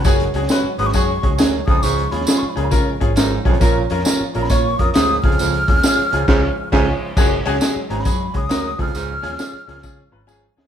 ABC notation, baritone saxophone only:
X:1
M:4/4
L:1/8
Q:"Swing" 1/4=135
K:F#
V:1 name="Baritone saxophone" clef=bass
F,, z2 G,, z2 F,, E,, | G,, z2 A,, z2 G,, E,, | A,, z2 A,, z2 G,, E,, | E,, z2 G,, G,, z G,, z |
F,, z2 G,, z2 F,, E,, | G,, z2 A,, z2 G,, E,, |]